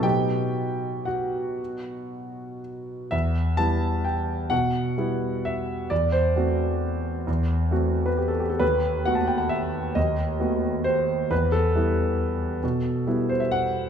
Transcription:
X:1
M:3/4
L:1/16
Q:1/4=132
K:Em
V:1 name="Grand piano"
[Gg]8 [Ff]4- | [Ff]8 z4 | e4 a4 g4 | f8 e4 |
d2 c8- c2- | c6- c B G A G A | B4 f a g f e4 | ^d8 c4 |
B2 A8- A2- | A6 c e f4 |]
V:2 name="Grand piano"
[B,,F,B,^D]12- | [B,,F,B,^D]12 | E,,4 [G,B,E]8 | B,,4 [G,B,E]8 |
E,,4 [A,CF]8 | E,,4 [A,CF]8 | ^D,,4 [A,B,F]8 | ^D,,4 [A,B,F]8 |
E,,4 [G,B,E]8 | B,,4 [G,B,E]8 |]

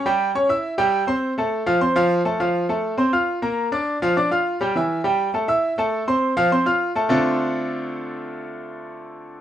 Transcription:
X:1
M:4/4
L:1/8
Q:1/4=204
K:Dm
V:1 name="Grand piano"
[G,Gg]2 [^C^c^c'] [Eee']2 [G,Gg]2 [=C=c=c']- | [Ccc'] [A,Aa]2 [F,Ff] [Ccc'] [F,Ff]2 [A,Aa] | [F,Ff]2 [A,Aa]2 [Ccc'] [Fff']2 [B,Bb]- | [B,Bb] [Ddd']2 [F,Ff] [Ddd'] [Fff']2 [G,Gg] |
[E,Ee]2 [G,Gg]2 [A,Aa] [Eee']2 [A,Aa]- | [A,Aa] [Ccc']2 [F,Ff] [Ccc'] [Fff']2 [A,Aa] | [D,A,CDFA]8- | [D,A,CDFA]8 |]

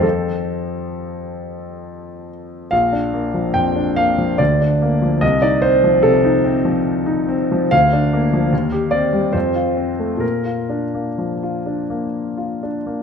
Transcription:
X:1
M:3/4
L:1/16
Q:1/4=70
K:Bb
V:1 name="Grand piano"
A8- A2 z2 | f4 g2 f2 d4 | e d c2 A8 | f6 d2 c4 |
B8- B2 z2 |]
V:2 name="Grand piano"
[F,,F,C]12 | B,,, D B, F, F,, D B, F, D,, D B, F, | C,, E C F, C, E C F,2 E C F, | D,, D B, F, E,, G C G, F,, F C A, |
B,, F D B, F, F D B,2 F D B, |]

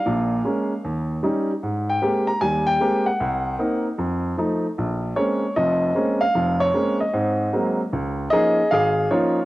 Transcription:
X:1
M:4/4
L:1/8
Q:"Swing" 1/4=152
K:Bbm
V:1 name="Grand piano"
f4- f z3 | z =g2 b a g2 _g- | g3 z4 z | z2 d2 e3 f- |
f d2 e4 z | [K:Db] z2 [Ae]2 [Af]2 [Fd]2 |]
V:2 name="Grand piano"
[B,,,B,,]2 [A,B,D] z E,,2 [=G,DE] z | A,,2 [A,B,C=G] z [E,,=G,]2 [A,B,CG] z | C,,2 [B,CE] z F,,2 [F,=A,E] z | B,,,2 [A,B,CD] z [F,,,F,,]2 [A,B,CD] z |
[F,,,F,,]2 [A,B,CD] z [A,,C]2 [G,A,B,C] z | [K:Db] D,,2 [F,B,DE] z A,,,2 [F,B,DE] z |]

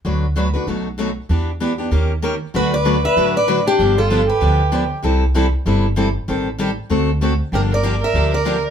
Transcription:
X:1
M:4/4
L:1/8
Q:"Swing" 1/4=193
K:D
V:1 name="Steel-string acoustic guitar"
z8 | z8 | B d2 e2 d2 G- | G A2 B4 z |
z8 | z8 | _B d2 e2 d2 z |]
V:2 name="Violin"
z8 | z8 | F B2 B2 B2 D- | D =F2 G4 z |
z8 | z8 | G _B2 B2 B2 z |]
V:3 name="Steel-string acoustic guitar"
[D,F,A,DFB] z [D,F,A,DFB] [A,DFB] [B,,F,A,^DF] z [B,,F,A,DF] z | [E,B,DG] z [E,B,DG] [B,DG] [_E,_B,_DG_B] z [E,B,DGB] z | [D,F,A,DFB] z [D,F,A,DFB] z [D,F,A,DFB] z [D,F,A,DFB] z | [D,=F,B,DG] z [D,F,B,DG] z [D,F,B,DG] z [D,F,B,DG] z |
[=C,E,G,=CEA] z [C,E,G,CEA] z [C,E,G,CEA] z [C,E,G,CEA] z | [_E,G,=CGA] z [E,G,CGA] z [D,A,CFA] z [D,A,CFA] z | [D,=F,_B,DG] z [D,F,B,DG] z [D,F,B,DG] z [D,F,B,DG] z |]
V:4 name="Upright bass" clef=bass
D,,4 B,,,4 | E,,4 _E,,4 | D,,4 A,,,4 | G,,,4 D,,4 |
=C,,4 G,,,4 | A,,,4 D,,4 | G,,,4 D,,4 |]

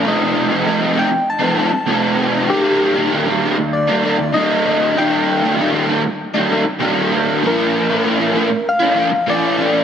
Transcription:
X:1
M:4/4
L:1/16
Q:1/4=98
K:Eblyd
V:1 name="Soft synth lead"
e6 g2 a6 z2 | G6 z2 d4 e4 | g4 z12 | B8 f4 d4 |]
V:2 name="Overdriven electric guitar"
[F,,C,F,A,CE]3 [F,A,CE] [F,,C,F,A,CE] [F,A,CE] [F,A,CE]3 [F,A,CE] [F,A,CE]2 [F,,C,F,A,CE]2 [F,A,CE]2 | [E,,B,,E,G,B,E]3 [E,G,B,E] [E,,B,,E,G,B,E] [E,G,B,E] [E,G,B,E]3 [E,G,B,E] [E,G,B,E]2 [E,,B,,E,G,B,E]2 [E,G,B,E]2 | [E,,B,,E,G,B,E]3 [E,G,B,E] [E,,B,,E,G,B,E] [E,G,B,E] [E,G,B,E]3 [E,G,B,E] [E,G,B,E]2 [E,,B,,E,G,B,E]2 [E,G,B,E]2 | [B,,F,B,DF]3 [B,DF] [B,,F,B,DF] [B,DF] [F,B,DF]3 [B,DF] [F,B,DF]2 [B,,F,B,DF]2 [F,B,DF]2 |]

